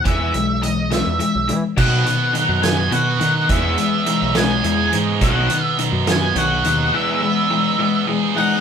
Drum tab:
CC |------|x-----|------|------|
HH |xxxxxx|-xxxxx|xxxxxx|xxxxxx|
SD |---o--|---o--|---o--|---o--|
BD |o-----|o-----|o-----|o-----|

CC |------|
HH |------|
SD |------|
BD |------|